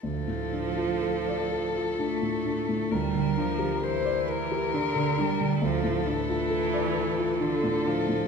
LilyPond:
<<
  \new Staff \with { instrumentName = "Violin" } { \time 3/4 \key d \minor \tempo 4 = 66 a'2. | bes'4 c''8 bes'4. | a'2 a'4 | }
  \new Staff \with { instrumentName = "Grand piano" } { \time 3/4 \key d \minor d,16 a,16 d'16 f'16 a'16 d''16 a'16 f'16 d'16 a,16 d'16 a,16 | d,16 d16 d'16 g'16 bes'16 d''16 bes'16 g'16 d'16 d16 d'16 d16 | d,16 a,16 d'16 f'16 a'16 d''16 a'16 f'16 d'16 a,16 d'16 a,16 | }
  \new Staff \with { instrumentName = "Cello" } { \clef bass \time 3/4 \key d \minor f2 a4 | g8 f8 e4 d8 g8 | f8 e4. d8 f8 | }
>>